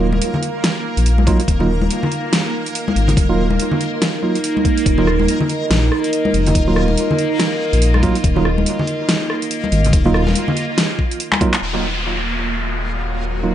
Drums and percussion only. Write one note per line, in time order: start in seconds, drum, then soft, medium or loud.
0.12 high conga medium
0.22 closed hi-hat medium
0.34 low conga medium
0.43 closed hi-hat medium
0.64 snare loud
0.64 closed hi-hat medium
0.97 closed hi-hat medium
1.06 closed hi-hat medium
1.18 high conga medium
1.27 kick loud
1.27 closed hi-hat medium
1.40 closed hi-hat medium
1.48 kick loud
1.48 closed hi-hat medium
1.60 low conga medium
1.81 high conga medium
1.91 closed hi-hat medium
2.03 low conga medium
2.12 closed hi-hat medium
2.33 snare loud
2.33 closed hi-hat medium
2.66 closed hi-hat medium
2.75 closed hi-hat medium
2.88 high conga loud
2.96 closed hi-hat medium
3.08 closed hi-hat medium
3.08 low conga medium
3.17 kick loud
3.17 closed hi-hat medium
3.50 high conga loud
3.60 closed hi-hat medium
3.71 low conga medium
3.81 closed hi-hat medium
4.02 snare loud
4.02 closed hi-hat medium
4.35 closed hi-hat soft
4.44 closed hi-hat medium
4.57 high conga medium
4.65 kick loud
4.65 closed hi-hat medium
4.78 closed hi-hat medium
4.86 kick loud
4.86 closed hi-hat medium
4.98 low conga medium
5.07 cross-stick medium
5.19 high conga medium
5.28 closed hi-hat medium
5.41 low conga medium
5.49 closed hi-hat soft
5.71 snare loud
5.71 closed hi-hat medium
5.92 cross-stick soft
6.04 closed hi-hat soft
6.13 closed hi-hat medium
6.25 high conga medium
6.34 closed hi-hat medium
6.47 closed hi-hat medium
6.47 low conga medium
6.55 kick loud
6.55 closed hi-hat medium
6.76 cross-stick medium
6.88 high conga medium
6.98 closed hi-hat medium
7.11 low conga medium
7.19 closed hi-hat soft
7.40 snare loud
7.40 closed hi-hat medium
7.73 closed hi-hat soft
7.82 closed hi-hat medium
7.94 cross-stick medium
7.94 high conga medium
8.03 kick loud
8.03 closed hi-hat soft
8.15 closed hi-hat medium
8.24 kick loud
8.24 closed hi-hat medium
8.36 low conga medium
8.45 cross-stick medium
8.58 high conga medium
8.66 closed hi-hat medium
8.79 low conga medium
8.87 closed hi-hat medium
9.09 snare loud
9.09 closed hi-hat medium
9.30 cross-stick medium
9.42 closed hi-hat soft
9.51 closed hi-hat medium
9.64 high conga medium
9.72 closed hi-hat medium
9.85 closed hi-hat medium
9.85 low conga medium
9.93 kick loud
9.93 closed hi-hat medium
10.05 low conga medium
10.14 cross-stick medium
10.27 snare soft
10.27 high conga medium
10.36 closed hi-hat medium
10.48 low conga medium
10.57 closed hi-hat medium
10.78 snare loud
10.78 closed hi-hat medium
10.99 kick medium
11.11 closed hi-hat medium
11.20 closed hi-hat medium
11.32 clap medium
11.32 high conga medium
11.41 kick loud
11.41 closed hi-hat medium
11.54 clap loud
11.54 closed hi-hat medium